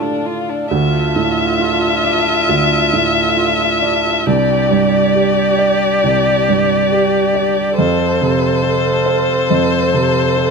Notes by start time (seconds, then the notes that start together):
Already playing: A2 D4 F4 A4 F5
0.03 D4
0.26 F4
0.50 D4
0.71 D2 D4 F4 A4 E5
1.16 A2
1.59 F4
2.04 D5
2.49 D2
2.93 A2
3.37 F4
3.82 D5
4.26 C2 D4 G4 D5 G5
4.71 G2
5.15 G4
5.59 D5
6.04 C2
6.49 G2
6.92 G4
7.35 D5
7.77 F2 C4 A4 C5 F5
8.22 C3
8.64 A4
9.06 C5
9.50 F2
9.94 C3
10.37 A4